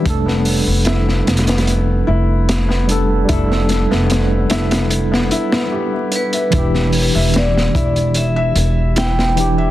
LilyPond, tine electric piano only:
\new Staff \with { instrumentName = "Tine electric piano" } { \time 4/4 \key e \phrygian \tempo 4 = 74 <g d' a'>2.~ <g d' a'>8 <g d' a'>8 | <g d' a'>2.~ <g d' a'>8 r8 | <e d' g'>2.~ <e d' g'>8 <e d' g'>8 | }